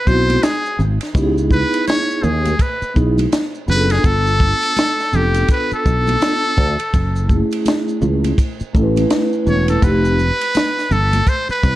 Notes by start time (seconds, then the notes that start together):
0.05 B1 B3 C4 E4 F#4 C5, kick, maracas
0.29 ride, high conga, maracas
0.43 G#4, snare, hi-hat pedal, ride, high conga, maracas
0.66 maracas
0.79 G#1, low conga, maracas
1.01 snare, ride, maracas
1.14 C#2 B3 D#4 E4 G4, kick, ride, maracas
1.23 G#4
1.38 maracas
1.51 B4, kick, high conga, maracas
1.73 ride, maracas
1.87 C#5, snare, hi-hat pedal, ride, high conga, maracas
2.10 maracas
2.23 D#2 G#4, low conga, maracas
2.45 ride, high conga, maracas
2.59 B4, kick, ride, maracas
2.82 muted fretless electric bass stroke, maracas
2.94 B1 B3 D#4 E4 G#4, kick, maracas
3.18 ride, high conga, maracas
3.32 snare, hi-hat pedal, ride, high conga, maracas
3.55 maracas
3.67 F#1 B3 D4 F4 G#4 B4, low conga, maracas
3.76 A4
3.90 G#4, snare, ride, maracas
4.04 G1 A4, kick, ride, maracas
4.27 maracas
4.40 kick, high conga, maracas
4.62 ride, maracas
4.76 snare, hi-hat pedal, ride, high conga, maracas
4.99 snare, maracas
5.12 F1 B3 D4 F4 A4, low conga, maracas
5.16 G4
5.34 ride, maracas
5.48 B4, kick, ride, maracas
5.71 A4, muted fretless electric bass stroke, maracas
5.86 B1, kick, maracas
6.07 ride, high conga, maracas
6.20 B3 D4 F4 A4, snare, hi-hat pedal, ride, high conga, maracas
6.43 maracas
6.57 D2, kick, low conga, maracas
6.79 ride, maracas
6.94 F#1, kick, ride, maracas
7.16 maracas
7.29 A3 C#4 E4 G#4, kick, high conga, maracas
7.51 ride, maracas
7.66 snare, hi-hat pedal, ride, high conga, maracas
7.88 maracas
8.02 C#2, low conga, maracas
8.24 ride, high conga, maracas
8.38 kick, ride, maracas
8.60 muted fretless electric bass stroke, maracas
8.73 A1 A3 C#4 E4 A4, kick, maracas
8.83 B4
8.96 ride, high conga, maracas
9.10 snare, hi-hat pedal, ride, high conga, maracas
9.33 maracas
9.47 E1 C#5, low conga, maracas
9.68 A4, ride, maracas
9.81 F1 A3 C4 D#4 G4 B4, kick, ride, maracas
10.05 maracas
10.19 high conga, maracas
10.41 ride, maracas
10.55 snare, hi-hat pedal, ride, high conga, maracas
10.78 snare, maracas
10.91 G1 A4, low conga, maracas
11.13 ride, high conga, maracas
11.27 C5, kick, ride, maracas
11.49 B4, muted fretless electric bass stroke, maracas
11.63 C2, kick, maracas